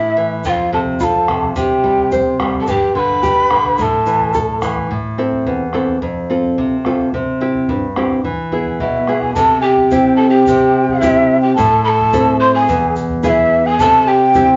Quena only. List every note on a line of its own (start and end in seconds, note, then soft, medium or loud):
0.00 0.31 E5 medium
0.46 0.51 G5 medium
0.50 0.71 F5 medium
0.74 0.80 A5 medium
1.00 1.52 A5 medium
1.00 1.04 B5 medium
1.56 2.36 G5 medium
2.61 2.71 A5 medium
2.69 2.95 G5 loud
2.95 3.77 B5 loud
2.95 3.00 C6 loud
3.77 3.83 B5 medium
3.82 4.61 A5 medium
8.80 9.23 E5 medium
9.21 9.33 G#5 medium
9.34 9.61 A5 loud
9.61 9.66 G#5 medium
9.65 10.14 G5 medium
10.16 10.29 A5 loud
10.30 11.01 G5 loud
11.00 11.40 E5 loud
11.41 11.55 G5 medium
11.55 11.82 A5 loud
11.84 11.90 B5 loud
11.89 12.36 A5 loud
12.41 12.54 C6 loud
12.56 12.94 G#5 loud
13.25 13.30 F5 medium
13.29 13.68 E5 loud
13.66 13.82 G#5 loud
13.80 14.09 A5 loud
14.08 14.56 G5 loud